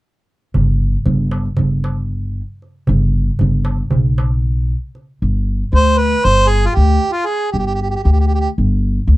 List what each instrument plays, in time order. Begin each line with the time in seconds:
0.54 upright bass G1, darbuka dum
1.06 upright bass G1, darbuka dum
1.31 darbuka tek
1.46 darbuka ka
1.57 upright bass G1, darbuka dum
1.84 darbuka tek
2.62 darbuka ka
2.87 upright bass G1, darbuka dum
3.39 upright bass G1, darbuka dum
3.65 darbuka tek
3.78 darbuka ka
3.91 upright bass B1, darbuka dum
4.18 darbuka tek
4.95 darbuka ka
5.22 upright bass G1
5.73 upright bass D2, harmonica C5
5.99 harmonica B4
6.25 upright bass G1, harmonica C5
6.48 harmonica G#4
6.66 harmonica F4
6.75 upright bass D2, harmonica G4
7.12 harmonica F4
7.26 harmonica G#4
7.52 upright bass G1, harmonica G4
7.59 harmonica G4
7.66 harmonica G4
7.74 harmonica G4
7.82 harmonica G4
7.90 harmonica G4
7.96 harmonica G4
8.03 upright bass D2, harmonica G4
8.12 harmonica G4
8.20 harmonica G4
8.27 harmonica G4
8.35 harmonica G4
8.40 harmonica G4
8.58 upright bass G1
9.07 upright bass D2